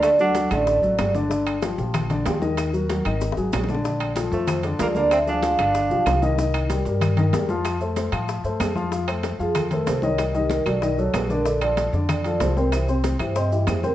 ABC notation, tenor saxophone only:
X:1
M:4/4
L:1/8
Q:1/4=189
K:Fmix
V:1 name="Tenor saxophone"
A, D2 A,4 z | z8 | z8 | z3 A,2 z B, B, |
C D2 D4 z | z8 | z8 | [K:F] z8 |
z8 | z8 | z8 |]